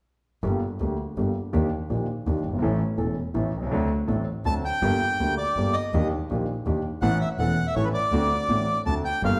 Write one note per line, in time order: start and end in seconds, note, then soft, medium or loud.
0.43 0.59 G1 soft
0.43 0.59 G2 soft
0.43 0.59 D3 soft
0.43 0.59 G3 soft
0.43 0.59 A#3 soft
0.43 0.59 G4 soft
0.80 0.96 D2 soft
0.80 0.96 D3 soft
0.80 0.96 G3 soft
0.80 0.96 A#3 soft
0.80 0.96 G4 soft
1.17 1.33 G1 soft
1.17 1.33 G2 soft
1.17 1.32 D3 soft
1.17 1.32 G3 soft
1.17 1.33 A#3 soft
1.17 1.33 G4 soft
1.53 1.69 D#2 soft
1.53 1.69 D#2 medium
1.53 1.69 D#3 soft
1.53 1.69 A#3 soft
1.53 1.69 D4 soft
1.53 1.69 G4 soft
1.90 2.05 A#1 soft
1.90 2.06 A#1 soft
1.90 2.05 A#2 soft
1.90 2.05 D#3 soft
1.90 2.05 A#3 soft
1.90 2.05 D4 soft
1.90 2.05 G4 soft
2.26 2.42 D#2 soft
2.26 2.42 D#3 soft
2.26 2.41 A#3 soft
2.26 2.42 D4 soft
2.26 2.42 G4 soft
2.45 2.53 F#1 soft
2.45 2.62 G1 soft
2.54 2.58 G1 soft
2.58 2.63 G#1 soft
2.58 2.77 A1 medium
2.58 2.77 E3 soft
2.58 2.77 A3 soft
2.62 2.78 A1 medium
2.62 2.78 A2 medium
2.62 2.78 C#4 soft
2.62 2.78 A4 soft
2.98 3.14 E1 soft
2.98 3.14 E2 soft
2.98 3.14 E3 soft
2.98 3.14 A3 soft
2.98 3.14 C#4 soft
2.98 3.14 A4 soft
3.34 3.50 A1 soft
3.34 3.51 A1 soft
3.34 3.50 A2 soft
3.34 3.50 E3 soft
3.34 3.50 A3 soft
3.34 3.50 C#4 soft
3.34 3.50 A4 soft
3.54 3.62 B1 soft
3.54 3.72 C2 soft
3.62 3.67 C2 soft
3.67 3.72 C#2 soft
3.71 3.87 D2 medium
3.71 3.88 D2 medium
3.71 3.87 D3 medium
3.71 3.87 F#3 medium
3.71 3.87 C4 soft
3.71 3.87 D4 soft
3.71 3.87 A4 soft
4.08 4.24 A1 soft
4.08 4.24 A2 soft
4.08 4.24 F#3 soft
4.08 4.24 C4 soft
4.08 4.24 D4 soft
4.08 4.24 A4 soft
4.45 4.61 D2 soft
4.45 4.62 D2 soft
4.45 4.61 D3 soft
4.45 4.61 F#3 soft
4.45 4.61 C4 soft
4.45 4.62 D4 soft
4.45 4.62 A4 soft
4.45 4.54 A5 medium
4.65 5.35 G5 medium
4.82 4.99 G1 medium
4.82 4.98 G2 medium
4.82 4.98 D3 soft
4.82 4.98 G3 soft
4.82 4.98 A#3 soft
4.82 4.98 G4 medium
5.20 5.35 D2 soft
5.20 5.36 D2 soft
5.20 5.36 D3 soft
5.20 5.36 G3 soft
5.20 5.36 A#3 soft
5.20 5.36 G4 soft
5.38 5.76 D5 medium
5.57 5.72 G1 soft
5.57 5.73 G1 soft
5.57 5.72 G2 soft
5.57 5.72 D3 soft
5.57 5.73 G3 soft
5.57 5.73 A#3 soft
5.57 5.73 G4 soft
5.73 6.08 D#5 medium
5.94 6.09 D#2 medium
5.94 6.09 D#3 medium
5.94 6.09 A#3 soft
5.94 6.09 D4 soft
5.94 6.09 G4 medium
6.31 6.45 A#1 soft
6.31 6.45 A#2 soft
6.31 6.45 D#3 soft
6.31 6.45 A#3 soft
6.31 6.45 D4 soft
6.31 6.46 G4 soft
6.66 6.81 D#2 soft
6.66 6.81 D#3 soft
6.66 6.81 A#3 soft
6.66 6.81 D4 soft
6.66 6.81 G4 soft
7.02 7.18 A1 medium
7.02 7.17 A2 medium
7.02 7.17 E3 soft
7.02 7.17 A3 soft
7.02 7.17 C#4 soft
7.02 7.17 A4 medium
7.02 7.19 F#5 medium
7.21 7.29 E5 medium
7.39 7.54 E1 soft
7.39 7.54 E2 soft
7.39 7.54 E3 soft
7.39 7.54 A3 soft
7.39 7.54 C#4 soft
7.39 7.54 A4 soft
7.39 7.67 F#5 medium
7.67 7.75 E5 medium
7.75 7.91 A1 soft
7.75 7.91 A2 soft
7.75 7.91 E3 soft
7.75 7.91 A3 soft
7.75 7.91 C#4 soft
7.75 7.91 A4 soft
7.75 7.85 C#5 medium
7.85 7.89 B4 medium
7.94 8.82 D5 medium
8.12 8.27 D2 medium
8.12 8.28 D2 medium
8.12 8.28 D3 medium
8.12 8.28 A3 soft
8.12 8.28 C4 soft
8.12 8.28 F#4 medium
8.49 8.64 A1 soft
8.49 8.65 A1 soft
8.49 8.64 A2 soft
8.49 8.64 D3 soft
8.49 8.64 A3 soft
8.49 8.64 C4 soft
8.49 8.65 F#4 soft
8.86 9.02 D2 soft
8.86 9.02 D3 soft
8.86 9.02 A3 soft
8.86 9.02 C4 soft
8.86 9.02 F#4 soft
8.86 8.95 A5 medium
9.05 9.22 G5 medium
9.23 9.39 G1 medium
9.23 9.39 G2 medium
9.23 9.39 D3 soft
9.23 9.39 G3 soft
9.23 9.39 A#3 soft
9.23 9.39 G4 soft
9.23 9.40 F5 medium